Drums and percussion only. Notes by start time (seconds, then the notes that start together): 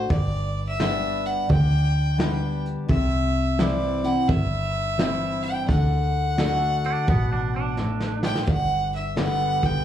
0.10 kick, closed hi-hat
0.80 snare, closed hi-hat
1.26 closed hi-hat
1.50 kick, closed hi-hat
2.20 snare, closed hi-hat
2.66 closed hi-hat
2.89 kick, closed hi-hat
3.59 snare, closed hi-hat
4.04 closed hi-hat
4.29 kick, closed hi-hat
4.99 snare, closed hi-hat
5.44 closed hi-hat
5.69 kick, closed hi-hat
6.38 snare, closed hi-hat
6.84 closed hi-hat
7.08 kick, closed hi-hat
7.78 snare
8.00 snare
8.23 snare
8.36 snare
8.47 kick, closed hi-hat
8.93 closed hi-hat
9.17 snare, closed hi-hat
9.63 kick, closed hi-hat